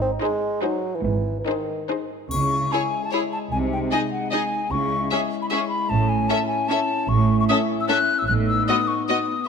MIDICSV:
0, 0, Header, 1, 10, 480
1, 0, Start_track
1, 0, Key_signature, 4, "minor"
1, 0, Tempo, 416089
1, 1212, Time_signature, 3, 2, 24, 8
1, 3140, Tempo, 398142
1, 11292, End_track
2, 0, Start_track
2, 0, Title_t, "Flute"
2, 0, Program_c, 0, 73
2, 2653, Note_on_c, 0, 85, 66
2, 3139, Note_on_c, 0, 80, 58
2, 3157, Note_off_c, 0, 85, 0
2, 3502, Note_off_c, 0, 80, 0
2, 3529, Note_on_c, 0, 81, 48
2, 3629, Note_off_c, 0, 81, 0
2, 3636, Note_on_c, 0, 83, 61
2, 3709, Note_off_c, 0, 83, 0
2, 3866, Note_on_c, 0, 81, 58
2, 3938, Note_off_c, 0, 81, 0
2, 4099, Note_on_c, 0, 80, 62
2, 4171, Note_off_c, 0, 80, 0
2, 4356, Note_on_c, 0, 79, 54
2, 4428, Note_off_c, 0, 79, 0
2, 4586, Note_on_c, 0, 80, 65
2, 4659, Note_off_c, 0, 80, 0
2, 4821, Note_on_c, 0, 78, 47
2, 5054, Note_off_c, 0, 78, 0
2, 5062, Note_on_c, 0, 80, 60
2, 5538, Note_on_c, 0, 85, 64
2, 5556, Note_off_c, 0, 80, 0
2, 6021, Note_off_c, 0, 85, 0
2, 6032, Note_on_c, 0, 80, 61
2, 6111, Note_off_c, 0, 80, 0
2, 6394, Note_on_c, 0, 83, 58
2, 6445, Note_off_c, 0, 83, 0
2, 6510, Note_on_c, 0, 85, 62
2, 6708, Note_off_c, 0, 85, 0
2, 6715, Note_on_c, 0, 83, 61
2, 6964, Note_on_c, 0, 81, 69
2, 6982, Note_off_c, 0, 83, 0
2, 7198, Note_on_c, 0, 80, 62
2, 7216, Note_off_c, 0, 81, 0
2, 7435, Note_on_c, 0, 81, 68
2, 7453, Note_off_c, 0, 80, 0
2, 7655, Note_off_c, 0, 81, 0
2, 7662, Note_on_c, 0, 80, 64
2, 7909, Note_on_c, 0, 81, 72
2, 7927, Note_off_c, 0, 80, 0
2, 8401, Note_on_c, 0, 85, 76
2, 8420, Note_off_c, 0, 81, 0
2, 8764, Note_off_c, 0, 85, 0
2, 8783, Note_on_c, 0, 85, 73
2, 8833, Note_off_c, 0, 85, 0
2, 8888, Note_on_c, 0, 87, 75
2, 8968, Note_off_c, 0, 87, 0
2, 9269, Note_on_c, 0, 88, 66
2, 9368, Note_off_c, 0, 88, 0
2, 9375, Note_on_c, 0, 90, 75
2, 9728, Note_on_c, 0, 88, 67
2, 9746, Note_off_c, 0, 90, 0
2, 9827, Note_off_c, 0, 88, 0
2, 9834, Note_on_c, 0, 90, 71
2, 9906, Note_off_c, 0, 90, 0
2, 10075, Note_on_c, 0, 88, 73
2, 10308, Note_off_c, 0, 88, 0
2, 10316, Note_on_c, 0, 87, 75
2, 10560, Note_on_c, 0, 85, 67
2, 10578, Note_off_c, 0, 87, 0
2, 10796, Note_off_c, 0, 85, 0
2, 10803, Note_on_c, 0, 87, 69
2, 11290, Note_off_c, 0, 87, 0
2, 11292, End_track
3, 0, Start_track
3, 0, Title_t, "Violin section"
3, 0, Program_c, 1, 48
3, 258, Note_on_c, 1, 72, 50
3, 607, Note_off_c, 1, 72, 0
3, 739, Note_on_c, 1, 72, 49
3, 1094, Note_off_c, 1, 72, 0
3, 1718, Note_on_c, 1, 72, 53
3, 2071, Note_off_c, 1, 72, 0
3, 2192, Note_on_c, 1, 72, 47
3, 2551, Note_off_c, 1, 72, 0
3, 3160, Note_on_c, 1, 73, 45
3, 3256, Note_off_c, 1, 73, 0
3, 3615, Note_on_c, 1, 73, 44
3, 3711, Note_off_c, 1, 73, 0
3, 4588, Note_on_c, 1, 75, 44
3, 4684, Note_off_c, 1, 75, 0
3, 5072, Note_on_c, 1, 75, 44
3, 5168, Note_off_c, 1, 75, 0
3, 6018, Note_on_c, 1, 76, 44
3, 6114, Note_off_c, 1, 76, 0
3, 6495, Note_on_c, 1, 76, 44
3, 6591, Note_off_c, 1, 76, 0
3, 7453, Note_on_c, 1, 76, 49
3, 7549, Note_off_c, 1, 76, 0
3, 7944, Note_on_c, 1, 76, 48
3, 8040, Note_off_c, 1, 76, 0
3, 8894, Note_on_c, 1, 76, 51
3, 8990, Note_off_c, 1, 76, 0
3, 9370, Note_on_c, 1, 76, 50
3, 9466, Note_off_c, 1, 76, 0
3, 10326, Note_on_c, 1, 75, 49
3, 10423, Note_off_c, 1, 75, 0
3, 10817, Note_on_c, 1, 75, 47
3, 10914, Note_off_c, 1, 75, 0
3, 11292, End_track
4, 0, Start_track
4, 0, Title_t, "Violin section"
4, 0, Program_c, 2, 48
4, 242, Note_on_c, 2, 68, 45
4, 598, Note_off_c, 2, 68, 0
4, 705, Note_on_c, 2, 68, 46
4, 1076, Note_off_c, 2, 68, 0
4, 1696, Note_on_c, 2, 68, 41
4, 2059, Note_off_c, 2, 68, 0
4, 2191, Note_on_c, 2, 68, 42
4, 2550, Note_off_c, 2, 68, 0
4, 3138, Note_on_c, 2, 68, 38
4, 3235, Note_off_c, 2, 68, 0
4, 3624, Note_on_c, 2, 68, 41
4, 3720, Note_off_c, 2, 68, 0
4, 4586, Note_on_c, 2, 68, 37
4, 4682, Note_off_c, 2, 68, 0
4, 5077, Note_on_c, 2, 68, 40
4, 5173, Note_off_c, 2, 68, 0
4, 6040, Note_on_c, 2, 68, 39
4, 6136, Note_off_c, 2, 68, 0
4, 6514, Note_on_c, 2, 68, 46
4, 6610, Note_off_c, 2, 68, 0
4, 7456, Note_on_c, 2, 69, 39
4, 7552, Note_off_c, 2, 69, 0
4, 7944, Note_on_c, 2, 69, 42
4, 8040, Note_off_c, 2, 69, 0
4, 8902, Note_on_c, 2, 69, 46
4, 8998, Note_off_c, 2, 69, 0
4, 9370, Note_on_c, 2, 69, 47
4, 9466, Note_off_c, 2, 69, 0
4, 10340, Note_on_c, 2, 66, 39
4, 10436, Note_off_c, 2, 66, 0
4, 10816, Note_on_c, 2, 66, 45
4, 10912, Note_off_c, 2, 66, 0
4, 11292, End_track
5, 0, Start_track
5, 0, Title_t, "French horn section"
5, 0, Program_c, 3, 60
5, 2676, Note_on_c, 3, 56, 44
5, 2685, Note_on_c, 3, 64, 42
5, 4063, Note_off_c, 3, 64, 0
5, 4129, Note_on_c, 3, 63, 41
5, 5502, Note_off_c, 3, 56, 0
5, 5531, Note_off_c, 3, 63, 0
5, 5556, Note_on_c, 3, 56, 48
5, 5560, Note_on_c, 3, 64, 45
5, 6952, Note_off_c, 3, 56, 0
5, 6989, Note_on_c, 3, 61, 48
5, 8363, Note_off_c, 3, 64, 0
5, 8425, Note_on_c, 3, 64, 56
5, 9827, Note_off_c, 3, 64, 0
5, 9840, Note_on_c, 3, 59, 55
5, 9845, Note_on_c, 3, 63, 47
5, 9853, Note_off_c, 3, 61, 0
5, 11093, Note_off_c, 3, 63, 0
5, 11292, Note_off_c, 3, 59, 0
5, 11292, End_track
6, 0, Start_track
6, 0, Title_t, "Viola section"
6, 0, Program_c, 4, 48
6, 249, Note_on_c, 4, 63, 49
6, 602, Note_off_c, 4, 63, 0
6, 714, Note_on_c, 4, 63, 49
6, 1081, Note_off_c, 4, 63, 0
6, 1697, Note_on_c, 4, 63, 42
6, 2060, Note_off_c, 4, 63, 0
6, 2190, Note_on_c, 4, 63, 38
6, 2550, Note_off_c, 4, 63, 0
6, 3134, Note_on_c, 4, 64, 36
6, 3231, Note_off_c, 4, 64, 0
6, 3628, Note_on_c, 4, 64, 35
6, 3724, Note_off_c, 4, 64, 0
6, 4589, Note_on_c, 4, 63, 39
6, 4685, Note_off_c, 4, 63, 0
6, 5069, Note_on_c, 4, 63, 35
6, 5165, Note_off_c, 4, 63, 0
6, 6033, Note_on_c, 4, 61, 39
6, 6129, Note_off_c, 4, 61, 0
6, 6511, Note_on_c, 4, 61, 36
6, 6607, Note_off_c, 4, 61, 0
6, 7449, Note_on_c, 4, 61, 41
6, 7545, Note_off_c, 4, 61, 0
6, 7928, Note_on_c, 4, 61, 39
6, 8024, Note_off_c, 4, 61, 0
6, 8897, Note_on_c, 4, 61, 50
6, 8993, Note_off_c, 4, 61, 0
6, 9366, Note_on_c, 4, 61, 45
6, 9463, Note_off_c, 4, 61, 0
6, 10338, Note_on_c, 4, 59, 47
6, 10435, Note_off_c, 4, 59, 0
6, 10825, Note_on_c, 4, 59, 38
6, 10922, Note_off_c, 4, 59, 0
6, 11292, End_track
7, 0, Start_track
7, 0, Title_t, "Bassoon"
7, 0, Program_c, 5, 70
7, 17, Note_on_c, 5, 60, 66
7, 122, Note_off_c, 5, 60, 0
7, 253, Note_on_c, 5, 56, 73
7, 711, Note_off_c, 5, 56, 0
7, 718, Note_on_c, 5, 54, 59
7, 1094, Note_on_c, 5, 52, 58
7, 1111, Note_off_c, 5, 54, 0
7, 1191, Note_off_c, 5, 52, 0
7, 1198, Note_on_c, 5, 52, 60
7, 1596, Note_off_c, 5, 52, 0
7, 1603, Note_on_c, 5, 52, 34
7, 1673, Note_on_c, 5, 51, 49
7, 1691, Note_off_c, 5, 52, 0
7, 2173, Note_off_c, 5, 51, 0
7, 11292, End_track
8, 0, Start_track
8, 0, Title_t, "Cello section"
8, 0, Program_c, 6, 48
8, 0, Note_on_c, 6, 44, 71
8, 152, Note_off_c, 6, 44, 0
8, 1205, Note_on_c, 6, 44, 60
8, 1594, Note_off_c, 6, 44, 0
8, 2673, Note_on_c, 6, 49, 53
8, 3063, Note_off_c, 6, 49, 0
8, 4101, Note_on_c, 6, 48, 61
8, 4504, Note_off_c, 6, 48, 0
8, 5542, Note_on_c, 6, 49, 57
8, 5944, Note_off_c, 6, 49, 0
8, 6974, Note_on_c, 6, 45, 63
8, 7371, Note_off_c, 6, 45, 0
8, 8409, Note_on_c, 6, 45, 64
8, 8808, Note_off_c, 6, 45, 0
8, 9849, Note_on_c, 6, 45, 63
8, 10248, Note_off_c, 6, 45, 0
8, 11292, End_track
9, 0, Start_track
9, 0, Title_t, "Double bass section"
9, 0, Program_c, 7, 48
9, 0, Note_on_c, 7, 32, 63
9, 149, Note_off_c, 7, 32, 0
9, 1193, Note_on_c, 7, 32, 58
9, 1587, Note_off_c, 7, 32, 0
9, 2664, Note_on_c, 7, 37, 57
9, 3038, Note_off_c, 7, 37, 0
9, 4102, Note_on_c, 7, 36, 52
9, 4484, Note_off_c, 7, 36, 0
9, 5549, Note_on_c, 7, 37, 57
9, 5928, Note_off_c, 7, 37, 0
9, 6979, Note_on_c, 7, 33, 58
9, 7354, Note_off_c, 7, 33, 0
9, 8407, Note_on_c, 7, 33, 67
9, 8787, Note_off_c, 7, 33, 0
9, 9842, Note_on_c, 7, 33, 59
9, 10224, Note_off_c, 7, 33, 0
9, 11292, End_track
10, 0, Start_track
10, 0, Title_t, "Drums"
10, 2666, Note_on_c, 9, 81, 33
10, 2781, Note_off_c, 9, 81, 0
10, 11292, End_track
0, 0, End_of_file